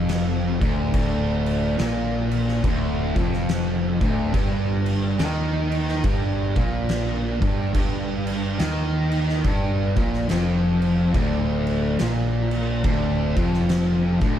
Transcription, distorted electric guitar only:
0.00 0.60 F2 loud
0.61 0.92 D2 loud
0.93 1.78 D2 loud
1.78 2.63 A#2 loud
2.64 3.15 D2 loud
3.16 4.00 F2 loud
4.01 4.33 D2 loud
4.34 5.18 G2 loud
5.19 6.03 D#3 loud
6.04 6.55 G2 loud
6.57 7.40 A#2 loud
7.41 7.72 G2 loud
7.74 8.58 G2 loud
8.58 9.43 D#3 loud
9.44 9.95 G2 loud
9.97 10.28 A#2 loud
10.29 11.13 F2 loud
11.15 11.99 D2 loud
11.99 12.83 A#2 loud
12.84 13.35 D2 loud
13.37 14.20 F2 loud
14.21 14.39 D2 loud

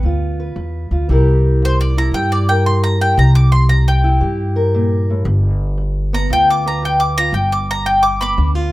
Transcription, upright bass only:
0.03 0.52 D2 medium
0.56 0.87 E2 medium
0.91 1.07 D2 medium
1.09 2.09 C2 medium
2.12 3.12 G2 medium
3.17 4.17 C2 loud
4.21 5.21 G2 medium
5.25 6.25 G1 loud
6.30 7.30 D2 medium
7.32 8.33 G1 medium
8.38 8.72 D2 medium

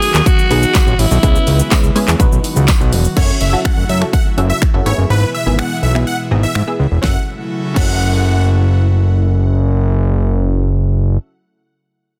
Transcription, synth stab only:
0.50 0.86 B3 medium
0.50 0.86 D#4 medium
0.50 0.87 G#4 medium
1.23 1.47 G#3 medium
1.23 1.47 B3 medium
1.23 1.47 C#4 medium
1.23 1.47 E4 medium
1.23 1.47 B4 medium
1.71 1.83 G#3 medium
1.71 1.83 B3 medium
1.71 1.83 C#4 medium
1.71 1.83 E4 medium
1.71 1.84 B4 loud
1.95 2.20 G#3 loud
1.95 2.20 B3 medium
1.95 2.20 C#4 medium
1.95 2.20 E4 medium
1.95 2.20 G#4 loud
2.20 2.97 D#4 loud
2.20 2.97 F#4 medium
2.20 2.97 B4 loud
3.16 3.34 C#4 medium
3.16 3.35 F#4 medium
3.16 3.35 A4 medium
3.16 3.35 E5 medium
3.53 3.77 C#4 medium
3.53 3.77 F#4 medium
3.53 3.77 A4 medium
3.53 3.77 E5 medium
4.01 4.19 C#4 medium
4.01 4.19 F#4 medium
4.01 4.19 A4 medium
4.01 4.19 E5 medium
4.37 4.55 C#4 medium
4.37 4.56 F#4 medium
4.37 4.56 A4 medium
4.37 4.56 E5 medium
4.74 4.86 C#4 medium
4.74 4.86 F#4 medium
4.74 4.86 A4 medium
4.74 4.85 E5 medium
4.86 5.34 B3 medium
4.86 5.34 E4 medium
4.86 5.35 G#4 medium
4.86 5.35 E5 medium
5.46 5.70 B3 medium
5.46 5.70 E4 medium
5.46 5.71 G#4 medium
5.46 5.71 E5 medium
5.95 6.13 B3 medium
5.95 6.13 E4 medium
5.95 6.13 G#4 medium
5.95 6.13 E5 medium
6.31 6.49 B3 medium
6.31 6.49 E4 medium
6.31 6.49 G#4 medium
6.31 6.49 D#5 medium
6.67 6.85 B3 medium
6.67 6.85 E4 medium
6.67 6.85 G#4 medium
6.67 6.86 E5 medium
7.02 7.16 C#4 medium
7.02 7.17 F#4 medium
7.02 7.18 A4 medium
7.06 7.18 E5 medium
7.74 11.16 C#4 medium
7.74 11.17 F#4 medium
7.74 11.18 A4 medium
7.78 11.20 E5 loud

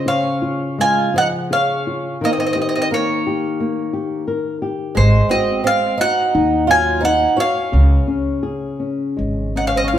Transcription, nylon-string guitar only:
0.00 2.17 C#3 medium
0.06 0.41 C5 medium
0.42 0.77 F4 soft
0.78 1.13 G#3 medium
1.14 1.49 F3 medium
1.51 1.85 G#4 medium
1.87 2.20 F4 medium
2.21 4.93 D#3 medium
2.56 2.90 G4 medium
2.92 3.26 A#4 medium
3.27 3.60 G4 medium
3.60 3.94 A#3 medium
3.93 4.27 G4 medium
4.28 4.61 A#4 medium
4.62 4.95 G4 medium
4.95 5.64 G#3 medium
5.31 5.65 F#4 medium
5.66 5.99 G#3 medium
6.01 6.34 F#4 medium
6.34 6.68 D#4 medium
6.70 7.03 F#3 medium
7.03 7.37 D#4 medium
7.38 7.72 F#4 medium
7.72 9.99 C#3 medium
8.07 8.43 C#4 medium
8.43 8.79 G#4 medium
8.80 9.16 C#4 soft
9.17 9.54 G#3 soft
9.56 9.93 C#4 soft
9.93 9.99 F4 medium

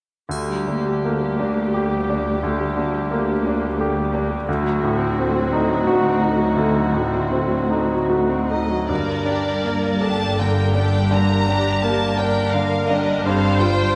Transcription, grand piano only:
0.29 2.40 D2 soft
0.68 1.25 D3 soft
1.04 1.61 A#3 soft
1.40 1.96 D4 soft
1.74 2.31 G4 soft
2.10 2.65 D4 soft
2.43 4.43 D2 soft
2.77 3.32 D3 soft
3.11 3.66 A#3 soft
3.47 4.00 D4 soft
3.81 4.34 G4 soft
4.14 4.48 D4 soft
4.49 6.55 D2 soft
4.83 5.39 A2 soft
5.19 5.74 C4 soft
5.53 6.08 D#4 soft
5.87 6.44 F#4 soft
6.21 6.79 D#4 soft
6.57 8.85 D2 soft
6.93 7.54 A2 soft
7.31 7.93 C4 soft
7.70 8.34 D#4 soft
8.09 8.74 F#4 soft
8.51 8.90 D#4 soft
8.89 11.07 G2 soft
9.26 9.86 D4 soft
9.64 10.24 A#3 soft
10.01 10.60 D4 soft
10.39 10.97 D3 soft
10.75 11.33 D4 soft
11.11 11.69 D3 soft
11.49 12.06 D4 soft
11.83 12.40 A#3 soft
12.19 12.76 D4 soft
12.54 13.11 D3 soft
12.90 13.26 D4 soft
13.26 13.95 G2 soft
13.61 13.95 F4 soft

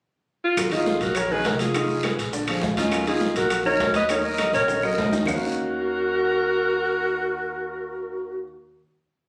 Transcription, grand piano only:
0.58 0.70 F#3 medium
0.58 0.70 F#4 medium
0.58 0.70 A#4 medium
0.72 0.96 D#3 medium
0.72 0.96 D#4 medium
0.72 0.96 D#5 medium
1.02 1.26 F#3 medium
1.02 1.26 F#4 medium
1.02 1.26 A#4 medium
1.31 1.43 D#3 medium
1.31 1.43 D#4 medium
1.31 1.44 D#5 medium
1.46 1.70 F#3 medium
1.46 1.70 F#4 medium
1.46 1.70 A#4 medium
1.75 1.99 D#3 medium
1.75 1.99 D#4 medium
1.75 2.00 D#5 medium
2.05 2.29 G#3 medium
2.05 2.29 G#4 medium
2.05 2.29 B4 medium
2.33 2.45 D3 medium
2.33 2.46 D4 medium
2.33 2.45 D5 medium
2.49 2.73 F3 medium
2.49 2.73 F4 medium
2.49 2.73 G#4 medium
2.78 2.90 D#3 medium
2.78 2.90 D#4 medium
2.78 2.90 D#5 medium
2.92 3.04 F#3 medium
2.92 3.05 F#4 medium
2.92 3.05 A#4 medium
3.07 3.31 D#3 medium
3.07 3.31 D#4 medium
3.07 3.31 D#5 medium
3.37 3.61 F#3 medium
3.37 3.61 F#4 medium
3.37 3.61 A#4 medium
3.65 3.78 D#3 medium
3.65 3.78 D#4 medium
3.65 3.78 D#5 medium
3.81 4.05 F#3 medium
3.81 4.05 F#4 medium
3.81 4.05 A#4 medium
4.10 4.34 D#3 medium
4.10 4.34 D#4 medium
4.10 4.35 D#5 medium
4.39 4.63 F#3 medium
4.39 4.64 F#4 medium
4.39 4.64 A#4 medium
4.70 4.81 D#3 medium
4.70 4.82 D#4 medium
4.70 4.82 D#5 medium
4.84 5.08 F#3 medium
4.84 5.08 F#4 medium
4.84 5.08 A#4 medium
5.13 5.25 D#3 medium
5.13 5.25 D#4 medium
5.13 5.25 D#5 medium
5.27 8.43 D#3 medium
5.27 8.43 A#3 medium
5.27 8.43 C#4 medium
5.27 8.43 D#4 medium
5.27 8.44 F#4 medium
5.27 8.44 F5 medium

